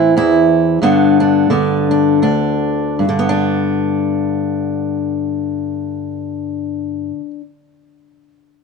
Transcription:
Already playing: A2 E3 C4 E4
0.17 E2 E4
0.82 G2 D3 B3 D4
1.20 D4
1.50 D3 B3
1.91 D4
2.22 D2 D4
2.99 G2
3.09 D3
3.19 B3
3.29 D4

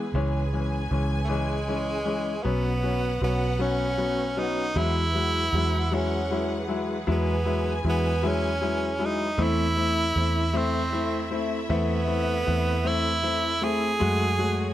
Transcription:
Already playing: B3 G#4 B4 G#5
0.13 C#2 E3 G#3 C#4 G#5
0.53 E3 G#3 C#4
0.91 C#2 E3 G#3 C#4
1.24 E3 A3
1.29 G#3 C#4
1.68 E3 G#3 C#4
2.05 E3 G#3 C#4
2.43 B1 F#3 B3 C#4 F#4 B4 F#5
2.83 F#3 B3 C#4
3.22 B1 F#3 B3 C#4
3.59 F#3 B3 C#4
3.98 F#3 B3 C#4
4.37 F#3 B3 C#4 D#4
4.75 E2 E3 F#3 G#3 E4 G#4 B4 F#5
5.15 F#3 G#3 E4
5.53 E2 F#3 G#3 E4
5.91 F#3 G#3 C#4 E4
6.31 F#3 G#3 E4
6.68 F#3 G#3 E4
7.07 E2 F#3 G#3 E4 G#5
7.11 B3
7.46 F#3 G#3 E4
7.84 E2 F#3 G#3 E4
7.89 B3
8.23 F#3 G#3 E4
8.27 C#4
8.61 F#3 G#3 E4
8.99 F#3 G#3 E4
9.06 D#4
9.38 E2 A3 C4 E4 E5
9.43 E4
9.76 A3 C4 E4
10.16 E2 A3 C4 E4
10.53 A3 C4 E4
10.92 A3 C4 E4
11.31 A3 C4 E4
11.69 E2 A3 B3 C4 E4
12.07 A3 C4 E4
12.46 E2 A3 C4 E4
12.84 A3 C4 E4
13.23 A3 C4 E4
13.61 A3 C4 E4 G#4
14.00 F#2 G#3 A3 F#4 C#5 G#5
14.38 G#3 A3 F#4

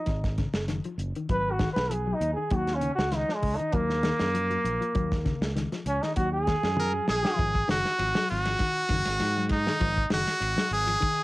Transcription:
Already playing: D#4
0.06 G#1, muted clean electric guitar stroke, kick, snare, closed hi-hat
0.24 kick, snare, closed hi-hat
0.38 C#3, kick, snare, closed hi-hat
0.54 F#1, snare, closed hi-hat
0.68 D#3, snare, closed hi-hat
0.84 F3, closed hi-hat
0.98 F#1, closed hi-hat
1.15 D#3, closed hi-hat
1.29 G#1 F#3 B4, kick, closed hi-hat
1.52 F#4
1.59 D#3, kick, snare, closed hi-hat
1.73 B1 B4, snare, closed hi-hat
1.90 F3 G#4, closed hi-hat
2.07 F#3
2.14 D#4
2.21 D#2, closed hi-hat
2.34 D#3 G#4
2.50 D#2 F#3, kick, closed hi-hat
2.55 F#4
2.67 snare, closed hi-hat
2.75 C#4
2.81 C#3, closed hi-hat
2.95 C#2 F#4, snare, closed hi-hat
3.12 D#3 D#4, snare, closed hi-hat
3.28 F3, snare
3.34 G#3
3.42 C#2, kick, open hi-hat
3.56 D#3 D#4, closed hi-hat
3.72 D#2 F#3 A#3, kick, closed hi-hat
3.90 snare
4.03 D#3, snare, closed hi-hat
4.19 F#2, snare, closed hi-hat
4.34 F3, closed hi-hat
4.50 F#3, closed hi-hat
4.64 A#1, closed hi-hat
4.81 F3, closed hi-hat
4.95 D#2 F#3, kick, closed hi-hat
5.12 kick, snare, closed hi-hat
5.25 C#3, kick, snare, closed hi-hat
5.41 C#2, snare, closed hi-hat
5.56 D#3, snare, closed hi-hat
5.72 F3, snare, closed hi-hat
5.86 C#2 C#4, closed hi-hat
6.02 D#3 D#4, snare, closed hi-hat
6.16 D#2 F#3 F#4, kick, closed hi-hat
6.33 G#4
6.47 D#3, kick, snare, closed hi-hat
6.63 F#2, snare, closed hi-hat
6.77 F3 A#4, high tom
6.93 F#3
7.08 A#1 G#4, snare
7.23 F3, snare
7.36 G#1 F3, kick, ride bell
7.55 kick
7.68 F#1 D#3 F#4, snare, ride bell
7.85 snare
7.99 G#1 F3, ride bell
8.15 F#3, snare
8.28 G#1 F#4, open hi-hat
8.45 F3, snare, ride bell
8.59 D#3, kick, snare, ride bell
8.89 F#1 D#3, kick, snare, ride bell
9.05 G#1, snare, ride bell
9.20 G#2 F3, snare, ride bell
9.37 F#3
9.49 D#4, kick, snare, ride bell
9.66 D#3, snare
9.80 G#1 F3, kick, ride bell
9.98 kick
10.10 F#1 D#3 F#4, snare, ride bell
10.27 snare, ride bell
10.40 G#1, muted clean electric guitar stroke, ride bell
10.56 F#3, snare
10.71 G#1 G#4, open hi-hat
10.87 F3, ride bell
11.01 D#3, kick, ride bell

